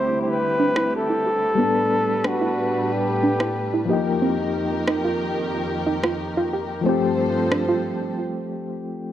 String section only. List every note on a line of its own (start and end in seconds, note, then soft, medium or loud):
0.00 1.56 D2 medium
0.00 1.56 C3 medium
0.00 1.56 E4 medium
0.00 1.56 G4 medium
1.58 3.87 A2 medium
1.58 3.87 G3 medium
1.58 3.87 D4 medium
1.58 3.87 B4 medium
3.90 6.83 F2 medium
3.90 6.83 D#3 medium
3.90 6.83 G4 medium
3.90 6.83 A#4 medium
6.85 8.16 G2 medium
6.85 8.16 F3 medium
6.85 8.16 A4 medium
6.85 8.16 C5 medium